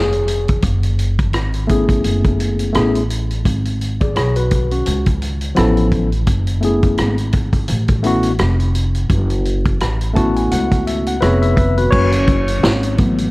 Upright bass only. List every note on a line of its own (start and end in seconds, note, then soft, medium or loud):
0.00 0.60 F1 loud
0.63 1.34 F#1 medium
1.34 2.01 G#1 medium
2.04 2.71 F#1 medium
2.76 3.42 A1 medium
3.46 4.12 G#1 medium
4.16 4.83 B1 medium
4.87 5.54 C#2 medium
5.58 6.24 A1 loud
6.28 6.95 F#1 medium
6.99 7.66 G#1 medium
7.70 8.36 A1 medium
8.40 9.07 F1 medium
9.10 9.77 F#1 loud
9.81 10.48 A1 medium
10.52 11.19 C#2 medium
11.22 11.89 F1 loud
11.93 12.59 F#1 loud
12.64 13.30 G#1 medium